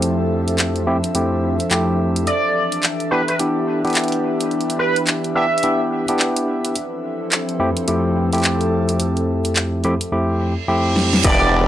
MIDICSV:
0, 0, Header, 1, 9, 480
1, 0, Start_track
1, 0, Tempo, 560748
1, 25, Time_signature, 4, 2, 24, 8
1, 9997, End_track
2, 0, Start_track
2, 0, Title_t, "Analog synth lead"
2, 0, Program_c, 0, 81
2, 1944, Note_on_c, 0, 74, 93
2, 2424, Note_off_c, 0, 74, 0
2, 2661, Note_on_c, 0, 71, 90
2, 2757, Note_off_c, 0, 71, 0
2, 2813, Note_on_c, 0, 71, 74
2, 2872, Note_off_c, 0, 71, 0
2, 4101, Note_on_c, 0, 71, 84
2, 4244, Note_off_c, 0, 71, 0
2, 4583, Note_on_c, 0, 76, 87
2, 4970, Note_off_c, 0, 76, 0
2, 9625, Note_on_c, 0, 74, 94
2, 9997, Note_off_c, 0, 74, 0
2, 9997, End_track
3, 0, Start_track
3, 0, Title_t, "Ambient pad"
3, 0, Program_c, 1, 92
3, 0, Note_on_c, 1, 53, 82
3, 0, Note_on_c, 1, 69, 91
3, 21, Note_on_c, 1, 62, 74
3, 1912, Note_off_c, 1, 53, 0
3, 1913, Note_off_c, 1, 69, 0
3, 1943, Note_on_c, 1, 67, 88
3, 1945, Note_on_c, 1, 52, 80
3, 5749, Note_off_c, 1, 62, 0
3, 5750, Note_off_c, 1, 67, 0
3, 5751, Note_off_c, 1, 52, 0
3, 5785, Note_on_c, 1, 53, 77
3, 5785, Note_on_c, 1, 64, 72
3, 5786, Note_on_c, 1, 69, 89
3, 7686, Note_off_c, 1, 64, 0
3, 8636, Note_off_c, 1, 53, 0
3, 8637, Note_off_c, 1, 69, 0
3, 9635, Note_on_c, 1, 52, 86
3, 9997, Note_off_c, 1, 52, 0
3, 9997, End_track
4, 0, Start_track
4, 0, Title_t, "Analog synth pad"
4, 0, Program_c, 2, 89
4, 0, Note_on_c, 2, 53, 67
4, 0, Note_on_c, 2, 60, 77
4, 0, Note_on_c, 2, 69, 65
4, 0, Note_on_c, 2, 76, 76
4, 1942, Note_off_c, 2, 53, 0
4, 1944, Note_off_c, 2, 60, 0
4, 1944, Note_on_c, 2, 62, 89
4, 2430, Note_on_c, 2, 67, 66
4, 2926, Note_on_c, 2, 71, 75
4, 3368, Note_off_c, 2, 69, 0
4, 5782, Note_on_c, 2, 60, 76
4, 6331, Note_on_c, 2, 53, 75
4, 6565, Note_off_c, 2, 67, 0
4, 6682, Note_off_c, 2, 62, 0
4, 6809, Note_on_c, 2, 69, 76
4, 7199, Note_off_c, 2, 71, 0
4, 8661, Note_off_c, 2, 76, 0
4, 8662, Note_off_c, 2, 53, 0
4, 8663, Note_off_c, 2, 60, 0
4, 8665, Note_off_c, 2, 69, 0
4, 9626, Note_on_c, 2, 59, 86
4, 9997, Note_off_c, 2, 59, 0
4, 9997, End_track
5, 0, Start_track
5, 0, Title_t, "Tine electric piano"
5, 0, Program_c, 3, 4
5, 0, Note_on_c, 3, 41, 72
5, 0, Note_on_c, 3, 57, 65
5, 0, Note_on_c, 3, 60, 68
5, 0, Note_on_c, 3, 64, 67
5, 0, Note_on_c, 3, 67, 82
5, 722, Note_off_c, 3, 41, 0
5, 722, Note_off_c, 3, 57, 0
5, 722, Note_off_c, 3, 60, 0
5, 722, Note_off_c, 3, 64, 0
5, 722, Note_off_c, 3, 67, 0
5, 744, Note_on_c, 3, 41, 81
5, 744, Note_on_c, 3, 67, 91
5, 745, Note_on_c, 3, 57, 78
5, 745, Note_on_c, 3, 64, 77
5, 746, Note_on_c, 3, 60, 80
5, 823, Note_off_c, 3, 41, 0
5, 823, Note_off_c, 3, 67, 0
5, 824, Note_off_c, 3, 57, 0
5, 824, Note_off_c, 3, 60, 0
5, 824, Note_off_c, 3, 64, 0
5, 985, Note_on_c, 3, 41, 75
5, 985, Note_on_c, 3, 57, 69
5, 986, Note_on_c, 3, 60, 67
5, 986, Note_on_c, 3, 64, 67
5, 986, Note_on_c, 3, 67, 82
5, 1336, Note_off_c, 3, 41, 0
5, 1336, Note_off_c, 3, 57, 0
5, 1336, Note_off_c, 3, 64, 0
5, 1336, Note_off_c, 3, 67, 0
5, 1337, Note_off_c, 3, 60, 0
5, 1464, Note_on_c, 3, 57, 75
5, 1465, Note_on_c, 3, 60, 70
5, 1465, Note_on_c, 3, 64, 76
5, 1465, Note_on_c, 3, 67, 90
5, 1466, Note_on_c, 3, 41, 78
5, 1933, Note_off_c, 3, 57, 0
5, 1934, Note_off_c, 3, 41, 0
5, 1934, Note_off_c, 3, 60, 0
5, 1934, Note_off_c, 3, 64, 0
5, 1934, Note_off_c, 3, 67, 0
5, 2665, Note_on_c, 3, 64, 81
5, 2666, Note_on_c, 3, 62, 78
5, 2666, Note_on_c, 3, 67, 90
5, 2667, Note_on_c, 3, 59, 83
5, 2744, Note_off_c, 3, 62, 0
5, 2744, Note_off_c, 3, 64, 0
5, 2744, Note_off_c, 3, 67, 0
5, 2745, Note_off_c, 3, 59, 0
5, 2906, Note_on_c, 3, 59, 72
5, 2907, Note_on_c, 3, 62, 71
5, 2907, Note_on_c, 3, 64, 69
5, 2907, Note_on_c, 3, 67, 80
5, 3257, Note_off_c, 3, 59, 0
5, 3257, Note_off_c, 3, 62, 0
5, 3257, Note_off_c, 3, 64, 0
5, 3257, Note_off_c, 3, 67, 0
5, 3291, Note_on_c, 3, 59, 76
5, 3291, Note_on_c, 3, 62, 64
5, 3291, Note_on_c, 3, 64, 67
5, 3293, Note_on_c, 3, 67, 79
5, 4562, Note_off_c, 3, 62, 0
5, 4563, Note_off_c, 3, 59, 0
5, 4563, Note_off_c, 3, 64, 0
5, 4563, Note_off_c, 3, 67, 0
5, 4585, Note_on_c, 3, 59, 85
5, 4585, Note_on_c, 3, 62, 79
5, 4585, Note_on_c, 3, 64, 77
5, 4585, Note_on_c, 3, 67, 95
5, 4664, Note_off_c, 3, 59, 0
5, 4664, Note_off_c, 3, 62, 0
5, 4664, Note_off_c, 3, 64, 0
5, 4664, Note_off_c, 3, 67, 0
5, 4824, Note_on_c, 3, 59, 73
5, 4824, Note_on_c, 3, 64, 71
5, 4825, Note_on_c, 3, 62, 71
5, 4825, Note_on_c, 3, 67, 86
5, 5176, Note_off_c, 3, 59, 0
5, 5176, Note_off_c, 3, 62, 0
5, 5176, Note_off_c, 3, 64, 0
5, 5176, Note_off_c, 3, 67, 0
5, 5211, Note_on_c, 3, 59, 75
5, 5211, Note_on_c, 3, 67, 81
5, 5212, Note_on_c, 3, 62, 68
5, 5212, Note_on_c, 3, 64, 70
5, 5774, Note_off_c, 3, 59, 0
5, 5774, Note_off_c, 3, 62, 0
5, 5774, Note_off_c, 3, 64, 0
5, 5774, Note_off_c, 3, 67, 0
5, 6502, Note_on_c, 3, 41, 87
5, 6502, Note_on_c, 3, 57, 78
5, 6502, Note_on_c, 3, 60, 79
5, 6502, Note_on_c, 3, 67, 95
5, 6503, Note_on_c, 3, 64, 81
5, 6582, Note_off_c, 3, 41, 0
5, 6582, Note_off_c, 3, 57, 0
5, 6582, Note_off_c, 3, 60, 0
5, 6582, Note_off_c, 3, 67, 0
5, 6583, Note_off_c, 3, 64, 0
5, 6744, Note_on_c, 3, 57, 66
5, 6744, Note_on_c, 3, 64, 70
5, 6745, Note_on_c, 3, 41, 74
5, 6745, Note_on_c, 3, 60, 69
5, 6745, Note_on_c, 3, 67, 82
5, 7095, Note_off_c, 3, 64, 0
5, 7096, Note_off_c, 3, 41, 0
5, 7096, Note_off_c, 3, 57, 0
5, 7096, Note_off_c, 3, 60, 0
5, 7096, Note_off_c, 3, 67, 0
5, 7132, Note_on_c, 3, 57, 67
5, 7132, Note_on_c, 3, 64, 67
5, 7133, Note_on_c, 3, 60, 65
5, 7133, Note_on_c, 3, 67, 86
5, 7134, Note_on_c, 3, 41, 75
5, 8403, Note_off_c, 3, 57, 0
5, 8403, Note_off_c, 3, 60, 0
5, 8403, Note_off_c, 3, 64, 0
5, 8403, Note_off_c, 3, 67, 0
5, 8404, Note_off_c, 3, 41, 0
5, 8427, Note_on_c, 3, 41, 84
5, 8427, Note_on_c, 3, 57, 78
5, 8427, Note_on_c, 3, 60, 82
5, 8427, Note_on_c, 3, 64, 78
5, 8427, Note_on_c, 3, 67, 94
5, 8505, Note_off_c, 3, 41, 0
5, 8505, Note_off_c, 3, 57, 0
5, 8505, Note_off_c, 3, 60, 0
5, 8505, Note_off_c, 3, 64, 0
5, 8505, Note_off_c, 3, 67, 0
5, 8665, Note_on_c, 3, 41, 75
5, 8665, Note_on_c, 3, 57, 71
5, 8665, Note_on_c, 3, 60, 68
5, 8665, Note_on_c, 3, 64, 69
5, 8665, Note_on_c, 3, 67, 85
5, 9016, Note_off_c, 3, 41, 0
5, 9016, Note_off_c, 3, 57, 0
5, 9016, Note_off_c, 3, 60, 0
5, 9016, Note_off_c, 3, 64, 0
5, 9016, Note_off_c, 3, 67, 0
5, 9144, Note_on_c, 3, 41, 81
5, 9144, Note_on_c, 3, 57, 76
5, 9144, Note_on_c, 3, 60, 75
5, 9144, Note_on_c, 3, 64, 76
5, 9144, Note_on_c, 3, 67, 92
5, 9613, Note_off_c, 3, 41, 0
5, 9613, Note_off_c, 3, 57, 0
5, 9613, Note_off_c, 3, 60, 0
5, 9613, Note_off_c, 3, 64, 0
5, 9613, Note_off_c, 3, 67, 0
5, 9625, Note_on_c, 3, 59, 102
5, 9625, Note_on_c, 3, 62, 93
5, 9625, Note_on_c, 3, 64, 88
5, 9626, Note_on_c, 3, 67, 112
5, 9997, Note_off_c, 3, 59, 0
5, 9997, Note_off_c, 3, 62, 0
5, 9997, Note_off_c, 3, 64, 0
5, 9997, Note_off_c, 3, 67, 0
5, 9997, End_track
6, 0, Start_track
6, 0, Title_t, "Wobble bass"
6, 0, Program_c, 4, 39
6, 9626, Note_on_c, 4, 28, 99
6, 9997, Note_off_c, 4, 28, 0
6, 9997, End_track
7, 0, Start_track
7, 0, Title_t, "Downlifter"
7, 0, Program_c, 5, 103
7, 9626, Note_on_c, 5, 60, 77
7, 9997, Note_off_c, 5, 60, 0
7, 9997, End_track
8, 0, Start_track
8, 0, Title_t, "Reverse cymbal"
8, 0, Program_c, 6, 119
8, 8665, Note_on_c, 6, 60, 70
8, 9625, Note_off_c, 6, 60, 0
8, 9997, End_track
9, 0, Start_track
9, 0, Title_t, "Drums"
9, 20, Note_on_c, 9, 42, 63
9, 106, Note_off_c, 9, 42, 0
9, 408, Note_on_c, 9, 42, 44
9, 494, Note_off_c, 9, 42, 0
9, 501, Note_on_c, 9, 39, 111
9, 501, Note_on_c, 9, 42, 60
9, 586, Note_off_c, 9, 39, 0
9, 586, Note_off_c, 9, 42, 0
9, 648, Note_on_c, 9, 42, 33
9, 734, Note_off_c, 9, 42, 0
9, 889, Note_on_c, 9, 42, 43
9, 975, Note_off_c, 9, 42, 0
9, 982, Note_on_c, 9, 42, 61
9, 1068, Note_off_c, 9, 42, 0
9, 1369, Note_on_c, 9, 42, 45
9, 1455, Note_off_c, 9, 42, 0
9, 1464, Note_on_c, 9, 39, 110
9, 1464, Note_on_c, 9, 42, 59
9, 1550, Note_off_c, 9, 39, 0
9, 1550, Note_off_c, 9, 42, 0
9, 1850, Note_on_c, 9, 42, 48
9, 1936, Note_off_c, 9, 42, 0
9, 1943, Note_on_c, 9, 42, 58
9, 2029, Note_off_c, 9, 42, 0
9, 2329, Note_on_c, 9, 42, 43
9, 2415, Note_off_c, 9, 42, 0
9, 2424, Note_on_c, 9, 39, 111
9, 2424, Note_on_c, 9, 42, 58
9, 2509, Note_off_c, 9, 39, 0
9, 2509, Note_off_c, 9, 42, 0
9, 2569, Note_on_c, 9, 42, 32
9, 2655, Note_off_c, 9, 42, 0
9, 2810, Note_on_c, 9, 42, 44
9, 2895, Note_off_c, 9, 42, 0
9, 2906, Note_on_c, 9, 42, 55
9, 2991, Note_off_c, 9, 42, 0
9, 3293, Note_on_c, 9, 42, 20
9, 3316, Note_off_c, 9, 42, 0
9, 3316, Note_on_c, 9, 42, 22
9, 3338, Note_off_c, 9, 42, 0
9, 3338, Note_on_c, 9, 42, 25
9, 3362, Note_off_c, 9, 42, 0
9, 3362, Note_on_c, 9, 42, 28
9, 3384, Note_off_c, 9, 42, 0
9, 3384, Note_on_c, 9, 39, 107
9, 3384, Note_on_c, 9, 42, 57
9, 3419, Note_off_c, 9, 42, 0
9, 3419, Note_on_c, 9, 42, 37
9, 3455, Note_off_c, 9, 42, 0
9, 3455, Note_on_c, 9, 42, 36
9, 3469, Note_off_c, 9, 39, 0
9, 3493, Note_off_c, 9, 42, 0
9, 3493, Note_on_c, 9, 42, 42
9, 3528, Note_off_c, 9, 42, 0
9, 3528, Note_on_c, 9, 42, 31
9, 3614, Note_off_c, 9, 42, 0
9, 3771, Note_on_c, 9, 42, 46
9, 3857, Note_off_c, 9, 42, 0
9, 3863, Note_on_c, 9, 42, 27
9, 3943, Note_off_c, 9, 42, 0
9, 3943, Note_on_c, 9, 42, 38
9, 4021, Note_off_c, 9, 42, 0
9, 4021, Note_on_c, 9, 42, 44
9, 4107, Note_off_c, 9, 42, 0
9, 4248, Note_on_c, 9, 42, 45
9, 4334, Note_off_c, 9, 42, 0
9, 4341, Note_on_c, 9, 39, 104
9, 4341, Note_on_c, 9, 42, 61
9, 4426, Note_off_c, 9, 39, 0
9, 4426, Note_off_c, 9, 42, 0
9, 4489, Note_on_c, 9, 42, 32
9, 4575, Note_off_c, 9, 42, 0
9, 4774, Note_on_c, 9, 42, 45
9, 4819, Note_off_c, 9, 42, 0
9, 4819, Note_on_c, 9, 42, 57
9, 4905, Note_off_c, 9, 42, 0
9, 5207, Note_on_c, 9, 42, 44
9, 5293, Note_off_c, 9, 42, 0
9, 5301, Note_on_c, 9, 39, 102
9, 5387, Note_off_c, 9, 39, 0
9, 5448, Note_on_c, 9, 42, 58
9, 5534, Note_off_c, 9, 42, 0
9, 5689, Note_on_c, 9, 42, 46
9, 5774, Note_off_c, 9, 42, 0
9, 5783, Note_on_c, 9, 42, 64
9, 5868, Note_off_c, 9, 42, 0
9, 6264, Note_on_c, 9, 39, 102
9, 6264, Note_on_c, 9, 42, 61
9, 6349, Note_off_c, 9, 39, 0
9, 6349, Note_off_c, 9, 42, 0
9, 6409, Note_on_c, 9, 42, 33
9, 6495, Note_off_c, 9, 42, 0
9, 6648, Note_on_c, 9, 42, 44
9, 6734, Note_off_c, 9, 42, 0
9, 6742, Note_on_c, 9, 42, 60
9, 6828, Note_off_c, 9, 42, 0
9, 7127, Note_on_c, 9, 42, 44
9, 7143, Note_off_c, 9, 42, 0
9, 7143, Note_on_c, 9, 42, 35
9, 7173, Note_off_c, 9, 42, 0
9, 7173, Note_on_c, 9, 42, 24
9, 7190, Note_off_c, 9, 42, 0
9, 7190, Note_on_c, 9, 42, 20
9, 7205, Note_off_c, 9, 42, 0
9, 7205, Note_on_c, 9, 42, 16
9, 7222, Note_off_c, 9, 42, 0
9, 7222, Note_on_c, 9, 39, 104
9, 7222, Note_on_c, 9, 42, 60
9, 7308, Note_off_c, 9, 39, 0
9, 7308, Note_off_c, 9, 42, 0
9, 7368, Note_on_c, 9, 42, 33
9, 7453, Note_off_c, 9, 42, 0
9, 7608, Note_on_c, 9, 42, 48
9, 7694, Note_off_c, 9, 42, 0
9, 7700, Note_on_c, 9, 42, 67
9, 7786, Note_off_c, 9, 42, 0
9, 7848, Note_on_c, 9, 42, 32
9, 7934, Note_off_c, 9, 42, 0
9, 8088, Note_on_c, 9, 42, 46
9, 8174, Note_off_c, 9, 42, 0
9, 8182, Note_on_c, 9, 39, 106
9, 8182, Note_on_c, 9, 42, 65
9, 8267, Note_off_c, 9, 39, 0
9, 8267, Note_off_c, 9, 42, 0
9, 8420, Note_on_c, 9, 42, 35
9, 8506, Note_off_c, 9, 42, 0
9, 8568, Note_on_c, 9, 42, 49
9, 8653, Note_off_c, 9, 42, 0
9, 9383, Note_on_c, 9, 38, 59
9, 9468, Note_off_c, 9, 38, 0
9, 9530, Note_on_c, 9, 38, 72
9, 9615, Note_off_c, 9, 38, 0
9, 9625, Note_on_c, 9, 42, 74
9, 9625, Note_on_c, 9, 49, 111
9, 9627, Note_on_c, 9, 36, 120
9, 9710, Note_off_c, 9, 42, 0
9, 9710, Note_off_c, 9, 49, 0
9, 9713, Note_off_c, 9, 36, 0
9, 9997, End_track
0, 0, End_of_file